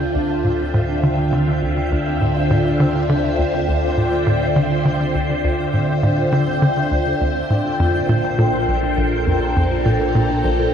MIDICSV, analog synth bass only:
0, 0, Header, 1, 2, 480
1, 0, Start_track
1, 0, Key_signature, -1, "minor"
1, 0, Tempo, 588235
1, 602, Time_signature, 4, 2, 24, 8
1, 8763, End_track
2, 0, Start_track
2, 0, Title_t, "Analog synth bass"
2, 0, Program_c, 0, 38
2, 122, Note_on_c, 0, 38, 69
2, 302, Note_off_c, 0, 38, 0
2, 362, Note_on_c, 0, 45, 72
2, 470, Note_off_c, 0, 45, 0
2, 603, Note_on_c, 0, 45, 99
2, 783, Note_off_c, 0, 45, 0
2, 843, Note_on_c, 0, 50, 95
2, 951, Note_off_c, 0, 50, 0
2, 1083, Note_on_c, 0, 50, 93
2, 1311, Note_off_c, 0, 50, 0
2, 1323, Note_on_c, 0, 38, 70
2, 1502, Note_off_c, 0, 38, 0
2, 1565, Note_on_c, 0, 38, 81
2, 1743, Note_off_c, 0, 38, 0
2, 1804, Note_on_c, 0, 45, 73
2, 1911, Note_off_c, 0, 45, 0
2, 2045, Note_on_c, 0, 45, 95
2, 2223, Note_off_c, 0, 45, 0
2, 2284, Note_on_c, 0, 50, 96
2, 2391, Note_off_c, 0, 50, 0
2, 2525, Note_on_c, 0, 50, 98
2, 2752, Note_off_c, 0, 50, 0
2, 2763, Note_on_c, 0, 38, 71
2, 2943, Note_off_c, 0, 38, 0
2, 3003, Note_on_c, 0, 38, 71
2, 3182, Note_off_c, 0, 38, 0
2, 3243, Note_on_c, 0, 45, 71
2, 3350, Note_off_c, 0, 45, 0
2, 3482, Note_on_c, 0, 45, 97
2, 3662, Note_off_c, 0, 45, 0
2, 3722, Note_on_c, 0, 50, 99
2, 3830, Note_off_c, 0, 50, 0
2, 3961, Note_on_c, 0, 50, 95
2, 4190, Note_off_c, 0, 50, 0
2, 4200, Note_on_c, 0, 38, 71
2, 4381, Note_off_c, 0, 38, 0
2, 4441, Note_on_c, 0, 38, 80
2, 4621, Note_off_c, 0, 38, 0
2, 4682, Note_on_c, 0, 45, 72
2, 4790, Note_off_c, 0, 45, 0
2, 4921, Note_on_c, 0, 45, 91
2, 5101, Note_off_c, 0, 45, 0
2, 5161, Note_on_c, 0, 50, 98
2, 5269, Note_off_c, 0, 50, 0
2, 5402, Note_on_c, 0, 50, 94
2, 5630, Note_off_c, 0, 50, 0
2, 5641, Note_on_c, 0, 38, 73
2, 5822, Note_off_c, 0, 38, 0
2, 5883, Note_on_c, 0, 38, 72
2, 6062, Note_off_c, 0, 38, 0
2, 6122, Note_on_c, 0, 45, 74
2, 6230, Note_off_c, 0, 45, 0
2, 6361, Note_on_c, 0, 41, 98
2, 6542, Note_off_c, 0, 41, 0
2, 6601, Note_on_c, 0, 46, 94
2, 6710, Note_off_c, 0, 46, 0
2, 6842, Note_on_c, 0, 46, 98
2, 7070, Note_off_c, 0, 46, 0
2, 7082, Note_on_c, 0, 34, 71
2, 7262, Note_off_c, 0, 34, 0
2, 7321, Note_on_c, 0, 34, 79
2, 7501, Note_off_c, 0, 34, 0
2, 7563, Note_on_c, 0, 41, 73
2, 7671, Note_off_c, 0, 41, 0
2, 7803, Note_on_c, 0, 41, 93
2, 7983, Note_off_c, 0, 41, 0
2, 8042, Note_on_c, 0, 46, 91
2, 8150, Note_off_c, 0, 46, 0
2, 8282, Note_on_c, 0, 46, 92
2, 8510, Note_off_c, 0, 46, 0
2, 8522, Note_on_c, 0, 34, 71
2, 8702, Note_off_c, 0, 34, 0
2, 8763, End_track
0, 0, End_of_file